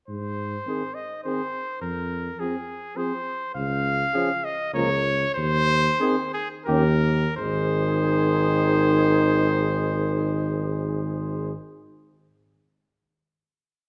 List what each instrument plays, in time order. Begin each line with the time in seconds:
0.08 tuba G#2, trumpet C5
0.67 trombone D#3, french horn C4, flugelhorn G#4
0.94 trumpet D#5
1.24 trombone D#3, french horn C4, flugelhorn G#4, trumpet C5
1.82 tuba F2, trumpet A#4
2.39 trombone F3, french horn C4, trumpet G#4, flugelhorn G#4
2.96 trombone F3, french horn C4, flugelhorn G#4, trumpet C5
3.55 tuba C#2, trumpet F5
4.13 trombone F3, french horn C#4, flugelhorn G#4
4.44 trumpet D#5
4.74 tuba C#2, trombone F3, french horn A#3, flugelhorn A#4, trumpet C#5
5.35 tuba D#2, trumpet C5
6.00 trombone D#3, french horn C4, flugelhorn G#4
6.34 trumpet G#4
6.66 tuba D#2, trombone D#3, french horn C#4, flugelhorn G4, trumpet A#4
7.37 tuba G#1, trombone D#3, french horn D#4, flugelhorn G#4, trumpet C5